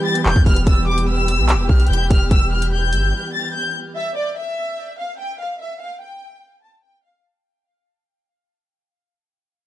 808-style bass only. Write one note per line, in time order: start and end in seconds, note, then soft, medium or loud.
0.26 0.35 E1 loud
0.36 0.46 E2 loud
0.46 0.66 E1 loud
0.67 1.40 E1 loud
1.39 1.55 B1 loud
1.54 1.69 E1 loud
1.69 1.89 B1 loud
1.90 2.10 E1 loud
2.11 2.30 E1 loud
2.31 2.94 E1 loud
2.93 3.12 G1 loud